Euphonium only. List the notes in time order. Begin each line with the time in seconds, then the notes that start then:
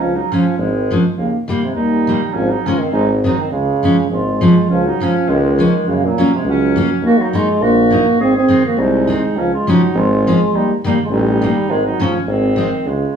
0.00 F3
0.15 F#3
0.32 F3
0.58 D#3
1.18 C#3
1.63 C3
1.77 G3
2.34 F3
2.51 F#3
2.66 F3
2.79 D#3
2.93 G#3
3.25 F#3
3.39 D#3
3.51 C#3
4.11 G#3
4.70 F3
4.87 F#3
5.02 F3
5.29 D#3
5.88 C#3
6.04 A#2
6.33 C3
6.47 F#3
7.05 A#3
7.20 F#3
7.36 G#3
7.62 A#3
8.21 C4
8.37 C4
8.66 A#3
8.79 G#3
9.37 F3
9.55 G#3
9.70 F#3
9.97 G#3
10.56 G3
10.86 G3
11.05 G#3
11.12 G3
11.71 D#3
11.86 F#3
12.02 F3
12.21 F3
12.28 D#3
12.87 C#3